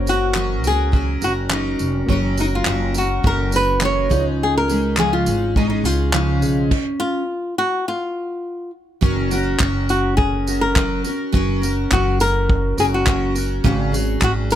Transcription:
Already playing: F#1 A#3 F#4 C5 C#5
0.06 C#4 F#4 A#4, tambourine
0.34 F#3 C#4 F#4 A#4, clap
0.64 C#2 C#4 F#4 G#4 A#4, tambourine
0.92 F#3 C#4 F#4 A#4, kick
1.21 F#1 C#4 F#4 A#4, tambourine
1.49 F#3 C#4 D#4 F#4 A#4, clap
1.79 F1, tambourine
2.06 F#1 F#3 A#3 C#4 F#4 A#4 C#5, kick
2.37 C#4 D#4 F#4 A#4, tambourine
2.55 F4
2.65 F#1 F#3 C#4 F#4 A#4, clap
2.94 C#4 F#4 A#4, tambourine
3.24 F#1 F#3 C#4 F#4 A#4, kick
3.51 C#4 F#4 A#4, tambourine
3.56 B4
3.80 F#3 A#3 C#4 F#4 A#4 C#5, clap
3.85 C#5
4.09 C#2 C#3 F3 G#3 C#4 D#4 F4 G#4, kick, tambourine
4.13 D5
4.20 D#5
4.43 G#4
4.57 A#4
4.68 G#3 C#4 D#4 G#4, tambourine
4.97 C#3 F3 G#3 C#4 D#4 G#4, clap
5.13 F4
5.26 G#1 G#3 C#4 D#4 G#4, tambourine
5.56 G#3 C#4 D#4 G#4, kick
5.70 D#4
5.84 C#2 G#3 C#4 D#4 F4 G#4, tambourine
6.12 C#3 F3 G#3 C#4 D#4 G#4, clap
6.41 B1 C#4 F4 G#4, tambourine
6.71 kick, crash
7.00 F4
7.58 F#4
7.88 F4
9.01 F#1 F#3 C#4 F#4 A#4, kick
9.30 C#4 F#4 A#4, tambourine
9.59 F#1 F#3 C#4 F#4 A#4, kick, clap
9.89 F#4, tambourine
10.17 G#4, kick
10.47 C#4 F#4 A#4, tambourine
10.61 A#4
10.76 F#3 C#4 F#4 A#4, kick, clap
11.04 C#4 F#4 A#4, tambourine
11.32 F#1 F#3 C#4 F#4 A#4, kick
11.62 C#4 F#4 A#4, tambourine
11.91 F#1 F#3 C#4 F#4 A#4, kick, clap
12.20 A#4, tambourine
12.50 kick
12.77 F#1 C#4 F#4 G#4 A#4, tambourine
12.94 F#4
13.06 F#3 C#4 F#4 A#4, kick, clap
13.35 C#4 F#4 A#4, tambourine
13.64 G#1 G#2 C#3 F#3 C#4 F#4 G#4, kick
13.92 F#3 C#4 F#4 G#4, tambourine
14.20 G#1 F#3 C#4 F#4 G#4, kick, clap
14.24 F#4
14.50 A#4, tambourine

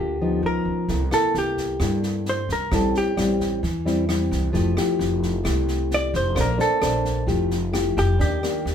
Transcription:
Already playing: D2 D3 A#3 F4 G4 A4
0.21 F3 B3 D#4
0.43 C#2 A#4
0.65 C#2
0.88 C2 C3 A#3 E4 A4, kick, snare
1.11 A#3 E4 A4, cross-stick, snare
1.34 C2, snare
1.38 G4
1.57 kick, snare
1.80 G2 A#3 E4 A4, kick, cross-stick, snare
2.03 snare
2.26 C5, snare
2.49 C2 A#4, kick, snare
2.71 A1 A2 G3 C4 E4 A4, kick, cross-stick, snare
2.95 G4, snare
3.17 A1 G3 C4 E4, cross-stick, snare
3.40 kick, snare
3.63 E2 E3, kick, snare
3.85 G3 C4 E4, snare
4.09 G3 C4 E4, cross-stick, snare
4.31 C2, kick, snare
4.53 F1 F3 A3 E4 G4, kick, snare
4.77 A3 E4 G4, cross-stick, snare
4.99 F1, snare
5.22 kick, snare
5.44 C2 C3 A3 E4 G4, kick, cross-stick, snare
5.68 snare
5.91 D5, snare
6.14 F1 C5, kick, snare
6.35 A#1 A#3 D4 A4 C5, kick, cross-stick, snare
6.41 A#4
6.58 D4 A4 C5, snare
6.81 A#1 D4 A4 C5, cross-stick, snare
7.05 kick, snare
7.27 F1 F3 A3 E4 G4, kick, snare
7.51 snare
7.72 A3 E4 G4, cross-stick, snare
7.97 F1 G4, kick, snare
8.19 D#2 D#3 A#3 D4 G4, kick, snare
8.43 A#3 D4 G4, cross-stick, snare
8.65 D#2, snare

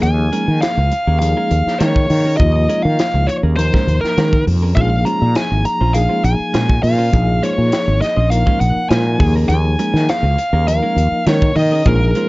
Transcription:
Already playing: F3 A#3 D#4 G#4
0.03 D#2 G#5, closed hi-hat
0.18 muted clean electric guitar stroke
0.32 G#3 C#4 G#4 A#4, closed hi-hat
0.48 D#3, muted clean electric guitar stroke
0.61 F5, snare, closed hi-hat
0.77 C#2, muted clean electric guitar stroke
0.92 muted clean electric guitar stroke, closed hi-hat
1.07 D#2 C#4 G#4 A#4
1.19 F3 A#3 D#4 G#4 F5, muted clean electric guitar stroke, closed hi-hat
1.37 G#3 C#4 G#4 A#4
1.51 D#2, closed hi-hat
1.67 muted fretless electric bass stroke, snare
1.78 D#3 G#3 C#4 G#4 A#4 C#5, snare, closed hi-hat
1.96 kick
2.10 D#3, muted clean electric guitar stroke, open hi-hat
2.25 C#4 G#4 A#4
2.37 D#2 F3 A#3 D#4 F4 D#5, kick, closed hi-hat
2.55 muted clean electric guitar stroke
2.69 G#3 C#4 G#4 A#4, closed hi-hat
2.82 D#3 F5, muted clean electric guitar stroke
2.99 snare, closed hi-hat
3.14 C#2, muted clean electric guitar stroke
3.27 C#5, muted clean electric guitar stroke, closed hi-hat
3.43 D#2 C#4 G#4 A#4
3.56 F3 A#3 D#4 A#4 C5, muted clean electric guitar stroke, closed hi-hat
3.74 G#3 C#4 G#4 A#4, kick, snare
3.87 D#2, closed hi-hat
4.01 A#4, muted fretless electric bass stroke, snare
4.17 D#3 G#3 C#4 G#4 A#4, snare, closed hi-hat
4.33 muted clean electric guitar stroke, kick
4.47 F2, muted clean electric guitar stroke, open hi-hat
4.62 C#4 G#4 A#4
4.75 A#1 F3 G#3 A#3 C#4 D#4 F4 G#4 C5 F5, kick, closed hi-hat
4.92 muted clean electric guitar stroke
5.05 G#3 C#4 F4 C5 A#5, closed hi-hat
5.21 A#2, muted clean electric guitar stroke
5.35 G#5, snare, closed hi-hat
5.51 G#1, muted clean electric guitar stroke
5.65 A#5, muted clean electric guitar stroke, closed hi-hat
5.81 A#1 C#4 F4 C5
5.94 F3 A#3 D#4 G#4 F5, muted clean electric guitar stroke, closed hi-hat
6.09 G#3 C#4 F4 C5
6.24 A#1 G#5, muted clean electric guitar stroke, closed hi-hat
6.53 A#2 G#3 C#4 F4 C5, snare, closed hi-hat
6.69 muted clean electric guitar stroke, kick
6.83 A#2 F5, muted clean electric guitar stroke, open hi-hat
6.98 C#4 F4 C5
7.12 A#1 F3 A#3 D#4 G#4, kick, closed hi-hat
7.28 muted clean electric guitar stroke
7.42 G#3 C#4 F4 C5 C#5, closed hi-hat
7.58 A#2, muted clean electric guitar stroke
7.72 snare, closed hi-hat
7.88 G#1, muted clean electric guitar stroke
8.01 D#5, muted clean electric guitar stroke, snare, closed hi-hat
8.16 A#1 C#4 F4 C5
8.29 F3 A#3 D#4 A#4 F5, muted clean electric guitar stroke, closed hi-hat
8.46 G#3 C#4 F4 C5, kick
8.60 A#1 F#5, muted clean electric guitar stroke, closed hi-hat
8.76 muted fretless electric bass stroke
8.89 A#2 G#3 C#4 F4 C5 G#5, snare, closed hi-hat
9.06 muted clean electric guitar stroke
9.18 D#2 F3 A#3 D#4 G#4, muted clean electric guitar stroke, kick, open hi-hat
9.36 C#4 G#4 A#4
9.49 D#2 G#5, closed hi-hat
9.65 muted clean electric guitar stroke
9.79 G#3 C#4 G#4 A#4, closed hi-hat
9.94 D#3, muted clean electric guitar stroke, snare
10.09 F5, snare, closed hi-hat
10.23 C#2, muted clean electric guitar stroke
10.38 muted clean electric guitar stroke, closed hi-hat
10.53 D#2 C#4 G#4 A#4
10.67 F3 A#3 D#4 A#4 F5, muted clean electric guitar stroke, closed hi-hat
10.83 G#3 C#4 G#4 A#4
10.96 D#2, muted clean electric guitar stroke, closed hi-hat
11.12 muted fretless electric bass stroke
11.26 D#3 G#3 C#4 G#4 A#4 C#5, snare, closed hi-hat
11.42 muted clean electric guitar stroke, kick
11.56 D#3 D#5, muted clean electric guitar stroke, open hi-hat
11.72 C#4 G#4 A#4
11.85 A#1 F3 G#3 A#3 C#4 D#4 F4 G#4 A#4 C5, kick, closed hi-hat
12.01 muted clean electric guitar stroke
12.15 G#3 C#4 F4 C5, closed hi-hat

